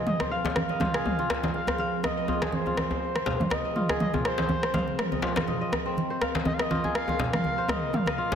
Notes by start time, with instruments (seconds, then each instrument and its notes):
Already playing: analog synth pad F3 C4 G#4 G5, kora F4 G#4 D#5
0.07 analog synth lead D#5, mid tom, muted conga, high conga
0.20 kora C5, cross-stick, djembe tone
0.31 kora F5, analog synth lead F5
0.45 muted conga, djembe slap, high conga, djembe tone
0.56 cross-stick, high conga
0.69 kora D#5, muted conga
0.80 kora F4, mid tom, djembe slap, high conga, djembe tone
0.94 kora G#4, cross-stick, muted conga
1.06 mid tom, djembe tone
1.19 kora F4, muted conga
1.30 cross-stick, djembe slap
1.43 djembe slap, high conga, djembe tone
1.54 analog synth lead F5, muted conga
1.67 kora C5, cross-stick, djembe tone
1.78 kora F5, muted conga
2.03 analog synth lead D#5, cross-stick, muted conga, high conga, djembe tone
2.17 kora D#5
2.28 kora F4, djembe tone
2.42 kora G#4, cross-stick, muted conga, djembe slap, high conga
2.52 analog synth lead C5, high conga
2.66 kora F4, muted conga, djembe tone
2.77 analog synth lead C5, cross-stick, djembe slap, high conga
2.91 muted conga, djembe tone
3.16 kora C5, cross-stick, muted conga
3.26 kora F5, djembe slap, djembe tone, low conga
3.40 mid tom, high conga
3.50 analog synth lead D#5, cross-stick, muted conga, djembe tone
3.65 kora D#5
3.76 kora F4, mid tom, muted conga
3.89 kora G#4, cross-stick, djembe tone
4.00 analog synth lead D#5, mid tom, muted conga, high conga
4.14 kora F4, djembe tone, low conga
4.25 analog synth lead C5, cross-stick
4.38 djembe slap, muted conga, high conga
4.49 high conga, djembe tone
4.63 kora C5, cross-stick, muted conga
4.74 kora F5, mid tom, djembe slap, high conga, djembe tone
4.88 muted conga
4.99 cross-stick, mid tom
5.12 kora D#5, muted conga, djembe tone
5.22 kora F4, djembe slap
5.36 kora F4, cross-stick, djembe slap, djembe tone, high conga
5.47 kora D#5, muted conga, high conga, low conga
5.61 kora D#5
5.72 cross-stick, muted conga, djembe tone
5.86 kora C4
5.97 analog synth pad A#4, muted conga, high conga
6.10 kora C5
6.21 kora F5, cross-stick, djembe tone
6.35 djembe slap, muted conga, high conga
6.45 analog synth lead D#5, djembe tone, high conga
6.53 analog synth lead F5
6.59 kora D#5, analog synth lead D#5, cross-stick, muted conga
6.71 kora F4, djembe slap, high conga
6.84 kora G#4, muted conga, djembe tone
6.95 analog synth lead F5, cross-stick
7.08 kora F4, muted conga, djembe tone
7.19 djembe slap, low conga
7.33 analog synth lead F5, cross-stick, mid tom, high conga
7.44 muted conga, djembe tone
7.58 kora C5
7.68 analog synth lead D#5, kora F5, cross-stick, mid tom, muted conga, djembe tone
7.93 analog synth lead F5, mid tom, muted conga, high conga
8.06 kora D#5, cross-stick, djembe tone
8.18 kora F4
8.32 kora G#4, djembe slap, djembe tone